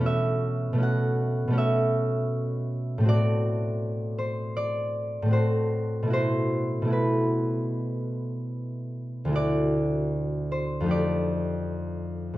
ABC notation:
X:1
M:4/4
L:1/8
Q:1/4=78
K:Bm
V:1 name="Harp"
[ABe]2 f2 e4 | d3 =c d2 c2 | =c2 B6 | d3 =c d4 |]
V:2 name="Harp"
[B,,A,CF]2 [B,,A,CF]2 [B,,A,CF]4 | [A,,A,=CF]6 [A,,A,CF]2 | [B,,A,EF]2 [B,,A,EF]6 | [D,,A,EF]4 [=F,,A,_EG]4 |]